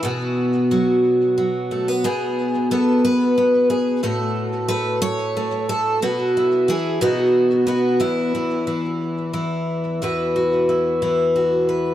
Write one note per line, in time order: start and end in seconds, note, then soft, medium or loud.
0.03 2.04 B2 medium
0.03 2.04 F#4 medium
0.71 1.37 F#3 medium
1.38 2.07 F#3 medium
1.71 1.88 A3 soft
1.88 2.05 B3 soft
2.04 4.04 B2 medium
2.04 2.71 G#4 medium
2.71 3.36 B3 medium
2.71 3.04 A4 medium
3.05 3.69 B4 medium
3.38 4.00 B3 medium
3.70 4.03 G#4 medium
4.03 5.98 A2 medium
4.03 4.69 A3 soft
4.03 5.99 F#4 soft
4.03 4.68 A4 medium
4.68 5.35 A3 medium
4.68 5.01 B4 loud
5.02 5.69 C#5 loud
5.37 5.98 A3 medium
5.69 6.02 A4 medium
6.02 6.68 B2 medium
6.02 6.68 F#4 medium
6.37 6.98 E4 soft
6.68 7.01 E3 medium
6.68 7.01 G#4 medium
7.01 8.00 B2 medium
7.01 7.66 B3 soft
7.01 7.97 D#4 soft
7.01 7.67 F#4 medium
7.67 8.34 B3 medium
7.67 8.00 F#4 medium
8.00 10.01 E2 medium
8.00 10.01 E4 medium
8.35 8.66 E3 soft
8.67 9.32 E3 medium
9.33 11.01 E3 medium
10.02 11.94 E2 medium
10.02 10.69 E4 medium
10.02 10.35 F#4 medium
10.02 11.68 B4 medium
10.36 11.35 F#4 soft
10.69 11.94 E4 soft
11.02 11.94 E3 medium
11.36 11.94 F#4 soft
11.69 11.94 B4 medium